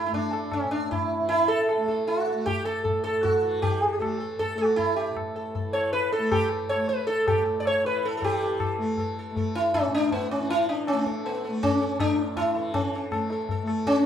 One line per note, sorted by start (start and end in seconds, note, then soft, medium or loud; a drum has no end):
0.00 0.63 A2 medium
0.00 1.19 E3 medium
0.00 0.08 A3 medium
0.06 1.76 A3 medium
0.06 0.13 E4 medium
0.13 0.53 D4 medium
0.13 tabla tin medium
0.13 tabla ge medium
0.33 0.51 A4 soft
0.33 tabla na medium
0.52 0.71 C#4 medium
0.52 tabla na medium
0.52 tabla ge medium
0.63 2.88 A2 medium
0.71 0.91 D4 medium
0.91 1.27 E4 medium
0.91 tabla tin medium
0.91 tabla ge medium
1.19 3.42 E3 medium
1.29 1.49 E4 loud
1.29 tabla tin medium
1.48 1.68 A4 medium
1.69 1.87 A4 soft
1.69 tabla na medium
1.76 2.32 A3 medium
1.88 2.06 A4 soft
1.88 tabla ke medium
2.07 2.48 F#4 medium
2.07 tabla tin medium
2.27 2.45 A4 soft
2.32 4.00 A3 medium
2.46 2.65 G4 medium
2.46 tabla tin medium
2.46 tabla ge medium
2.65 2.83 A4 medium
2.84 3.03 A4 soft
2.84 tabla na medium
2.84 tabla ge medium
2.88 5.10 A2 medium
3.04 3.24 A4 medium
3.23 3.62 F#4 medium
3.23 tabla tin medium
3.23 tabla ge medium
3.42 5.63 E3 medium
3.42 3.61 A4 soft
3.62 4.17 G4 medium
3.62 tabla tin loud
3.62 tabla ge medium
4.00 4.55 A3 medium
4.00 4.19 A4 soft
4.00 tabla na medium
4.00 tabla ge medium
4.20 4.38 A4 soft
4.39 4.60 A4 medium
4.39 tabla tin medium
4.39 tabla ge medium
4.55 6.19 A3 medium
4.55 4.76 F#4 medium
4.76 4.96 E4 medium
4.76 tabla tin medium
4.76 tabla ge medium
4.96 5.15 G4 medium
5.10 7.28 A2 soft
5.17 tabla na medium
5.17 tabla ge medium
5.36 5.54 A4 soft
5.55 5.73 A4 soft
5.55 tabla tin medium
5.55 tabla ge medium
5.64 7.84 E3 medium
5.73 5.92 C#5 medium
5.73 tabla na medium
5.93 6.12 B4 medium
5.93 tabla te medium
6.12 6.31 A4 medium
6.12 tabla te medium
6.19 6.74 A3 medium
6.32 6.50 G4 medium
6.32 tabla na loud
6.32 tabla ge medium
6.51 6.69 A4 soft
6.69 6.88 C#5 medium
6.69 tabla na medium
6.74 8.78 A3 medium
6.89 7.06 B4 medium
6.89 tabla te medium
7.07 7.27 A4 medium
7.07 tabla te medium
7.28 9.86 A2 medium
7.28 7.45 G4 medium
7.28 tabla na loud
7.28 tabla ge medium
7.45 7.60 A4 soft
7.60 7.65 D5 medium
7.66 7.86 C#5 loud
7.66 tabla na medium
7.84 8.21 E3 medium
7.84 8.05 B4 medium
7.84 tabla te medium
8.03 8.16 A4 medium
8.03 tabla te medium
8.17 10.39 E3 medium
8.17 8.22 A4 medium
8.22 8.77 G4 medium
8.22 8.41 A4 soft
8.22 tabla tin loud
8.22 tabla ge loud
8.43 8.60 A4 soft
8.60 8.79 A4 soft
8.60 tabla na medium
8.60 tabla ge medium
8.78 9.32 A3 medium
8.82 8.98 A4 soft
8.98 9.17 A4 soft
8.98 tabla tin medium
8.98 tabla ge medium
9.19 9.36 A4 soft
9.32 10.92 A3 medium
9.36 9.54 A4 soft
9.36 tabla tin medium
9.36 tabla ge medium
9.55 9.74 E4 medium
9.74 9.94 C#4 loud
9.74 tabla na medium
9.74 tabla ge medium
9.86 12.01 A2 medium
9.95 10.12 D4 loud
10.11 10.31 B3 medium
10.11 tabla tin medium
10.11 tabla ge medium
10.31 10.50 C#4 medium
10.39 12.55 E3 medium
10.49 10.69 E4 loud
10.49 tabla tin medium
10.69 10.88 D4 medium
10.87 11.05 C#4 medium
10.87 tabla na medium
10.92 11.48 A3 medium
11.06 11.24 A4 soft
11.06 tabla ke medium
11.25 11.62 B3 medium
11.25 tabla tin medium
11.45 13.10 A3 medium
11.45 11.62 A4 soft
11.63 12.00 C#4 loud
11.63 tabla tin medium
11.63 tabla ge medium
11.82 11.99 A4 soft
12.00 14.06 A2 medium
12.00 12.36 D4 loud
12.00 tabla na medium
12.00 tabla ge medium
12.19 tabla te medium
12.37 12.73 E4 loud
12.37 tabla na medium
12.37 tabla ge medium
12.55 14.06 E3 medium
12.55 12.73 A4 soft
12.55 tabla te medium
12.74 13.26 C#4 medium
12.74 tabla tin loud
12.74 tabla ge loud
12.95 13.12 A4 soft
13.10 13.63 A3 medium
13.10 13.30 A4 soft
13.10 tabla na medium
13.10 tabla ge medium
13.30 13.48 A4 soft
13.30 tabla te medium
13.49 13.67 A4 soft
13.49 tabla tin medium
13.49 tabla ge medium
13.63 14.06 A3 medium
13.68 13.86 A4 soft
13.68 tabla na medium
13.87 14.06 C#4 loud
13.87 tabla ke medium